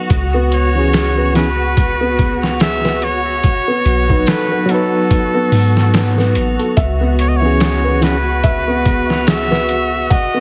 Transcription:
Already playing: felt piano B3 A4 B4, violin section F#4, reed electric piano B4
0.10 808-style bass C#2, kick, closed hi-hat
0.34 felt piano B3
0.52 muted trumpet C#5, closed hi-hat, triangle
0.75 reed electric piano E3 B3 C#4
0.79 reed electric piano G#4
0.93 felt piano G#4, snare, closed hi-hat, maracas
1.17 felt piano B4
1.34 reed electric piano E3 B3 C#4, muted trumpet B4, snare, closed hi-hat
1.38 reed electric piano G#4
1.77 kick, closed hi-hat
2.01 felt piano B3
2.19 kick, closed hi-hat
2.42 snare, triangle
2.60 felt piano G#4, muted trumpet E5, snare, closed hi-hat, maracas
2.84 felt piano B4, snare
3.02 muted trumpet C#5, closed hi-hat
3.44 kick, closed hi-hat
3.68 felt piano B3
3.85 808-style bass B1, closed hi-hat, triangle
4.08 reed electric piano F#3 B3 D#4, kick
4.12 reed electric piano B4
4.26 felt piano A4, muted trumpet B4, snare, closed hi-hat, maracas
4.51 felt piano B4
4.66 reed electric piano F#3 B3, closed hi-hat
4.71 reed electric piano D#4 B4, muted trumpet A4
5.11 kick, closed hi-hat
5.34 felt piano B3
5.52 808-style bass G#2, open hi-hat
5.77 snare
5.94 felt piano B3, snare, closed hi-hat, maracas
6.18 felt piano B3, snare
6.35 808-style bass A1, closed hi-hat, triangle
6.59 felt piano A4, closed hi-hat
6.77 808-style bass C#2, violin section F#4, felt piano E5, kick, closed hi-hat
7.01 felt piano B3
7.19 muted trumpet C#5, closed hi-hat, triangle
7.28 muted trumpet D#5
7.36 muted trumpet C#5
7.41 reed electric piano E3 B3 C#4
7.46 reed electric piano G#4
7.60 felt piano G#4, snare, closed hi-hat, maracas
7.84 felt piano B4
8.01 reed electric piano E3 B3 C#4, muted trumpet B4, snare, closed hi-hat
8.05 reed electric piano G#4
8.44 felt piano E5, kick, closed hi-hat
8.68 felt piano B3
8.85 kick, closed hi-hat
9.10 snare, triangle
9.27 felt piano G#4, muted trumpet E5, snare, closed hi-hat, maracas
9.51 felt piano B4, snare
9.69 closed hi-hat
10.10 muted trumpet D#5, felt piano F#5, kick, closed hi-hat
10.34 felt piano B3

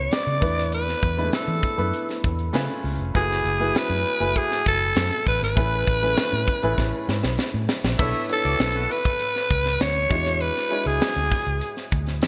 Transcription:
Already playing: grand piano G#3 B3 C#4 E4 B4 C#5, alto saxophone C#5
0.11 alto saxophone D5, snare, closed hi-hat, tambourine
0.27 fingered electric bass C#3, closed hi-hat
0.41 fingered electric bass E2, grand piano A3 B3 D4 E4 B4, kick, open hi-hat
0.57 snare, closed hi-hat
0.72 alto saxophone B4, closed hi-hat
0.89 snare
1.02 fingered electric bass E2, kick, closed hi-hat
1.17 grand piano G#3 B3 D4 E4 B4, closed hi-hat
1.24 grand piano A3
1.32 alto saxophone A4, muted fingered electric bass stroke, snare, closed hi-hat, tambourine
1.48 fingered electric bass E3
1.63 kick, closed hi-hat
1.77 fingered electric bass F#2, grand piano A3 B3 D4 E4 B4, closed hi-hat
1.94 closed hi-hat
2.09 snare, closed hi-hat
2.24 fingered electric bass E2, kick, closed hi-hat
2.39 closed hi-hat
2.53 fingered electric bass C#3, grand piano A3 C#4 F4 G#4 B4, snare, closed hi-hat, tambourine
2.70 closed hi-hat
2.84 fingered electric bass C#2, open hi-hat
2.99 fingered electric bass F1, closed hi-hat
3.14 fingered electric bass F#1, grand piano A3 E4 F#4 G#4 B4, alto saxophone G#4, kick, closed hi-hat
3.31 snare
3.44 fingered electric bass F#1, closed hi-hat
3.59 grand piano A3 E4 F#4 G#4 B4, closed hi-hat
3.75 alto saxophone B4, muted fingered electric bass stroke, snare, closed hi-hat, tambourine
3.90 fingered electric bass F#2
4.06 closed hi-hat
4.20 fingered electric bass F#1, grand piano A3 E4 F#4 B4 G#5, closed hi-hat
4.36 alto saxophone G#4, kick, closed hi-hat
4.51 snare
4.66 fingered electric bass F#1, alto saxophone A4, kick, closed hi-hat
4.81 closed hi-hat
4.96 fingered electric bass F#2, snare, closed hi-hat, tambourine
5.11 closed hi-hat
5.26 fingered electric bass A1, alto saxophone B4, kick, open hi-hat
5.42 fingered electric bass G#1, alto saxophone B4, snare, closed hi-hat
5.56 fingered electric bass A1, grand piano A3 C#4 E4 G#4 B4, kick, closed hi-hat
5.72 closed hi-hat
5.87 fingered electric bass A1, kick, closed hi-hat
6.02 grand piano A3 C#4 E4 G#4 B4, closed hi-hat
6.17 snare, closed hi-hat, tambourine
6.33 fingered electric bass A2
6.48 kick, closed hi-hat
6.62 fingered electric bass A1, grand piano A3 C#4 E4 G#4 B4, closed hi-hat
6.78 fingered electric bass A1, kick, snare
7.08 fingered electric bass G#2, snare
7.23 fingered electric bass B1, snare
7.38 snare, tambourine
7.54 fingered electric bass A2
7.69 snare
7.84 fingered electric bass A#1, snare
7.98 fingered electric bass B1, grand piano B3 D4 E4 A4 C#5, horn section E4 A4 C#5 E5, kick, crash
8.14 closed hi-hat
8.29 grand piano B3 D4 E4 A4 C#5, closed hi-hat
8.33 alto saxophone A4
8.44 fingered electric bass C#2, horn section D4 F#4 A4 D5, closed hi-hat
8.59 fingered electric bass B1, snare, closed hi-hat, tambourine
8.74 horn section B3 E4 F#4 B4, closed hi-hat
8.89 horn section B3 E4 F#4 B4, alto saxophone B4, open hi-hat
9.05 kick, closed hi-hat
9.20 closed hi-hat
9.35 snare, closed hi-hat
9.50 fingered electric bass C#2, kick, closed hi-hat
9.65 snare, closed hi-hat
9.80 fingered electric bass D2, alto saxophone C#5, snare, closed hi-hat, tambourine
10.09 fingered electric bass E2, grand piano G#3 D4 E4 F#4 C#5, kick, open hi-hat
10.25 snare, closed hi-hat
10.40 alto saxophone B4, closed hi-hat
10.56 snare, closed hi-hat
10.70 grand piano G#3 D4 E4 F#4 C#5, closed hi-hat
10.86 fingered electric bass C#2, alto saxophone G#4, closed hi-hat
11.01 snare, closed hi-hat, tambourine
11.16 fingered electric bass D2
11.32 kick, open hi-hat
11.47 fingered electric bass C#2, closed hi-hat
11.61 closed hi-hat
11.76 snare, closed hi-hat
11.91 fingered electric bass D2, kick, closed hi-hat
12.07 snare, closed hi-hat
12.22 fingered electric bass E2, snare, closed hi-hat, tambourine

